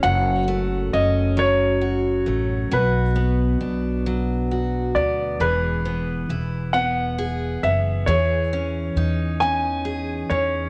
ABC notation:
X:1
M:6/8
L:1/8
Q:3/8=45
K:E
V:1 name="Grand piano"
f2 d c3 | B4- B =d | B3 f2 e | c3 g2 c |]
V:2 name="Steel-string acoustic guitar"
[F,,F] A, C F, F A, | [B,,F] B, =D F, F B, | [E,G] B, E B, G B, | [E,G] C D C G C |]
V:3 name="Upright bass" clef=bass
F,,,2 F,,,3 A,,, | B,,,2 B,,,3 =D,, | E,,,2 E,,,3 F,,, | E,,2 E,,3 E,, |]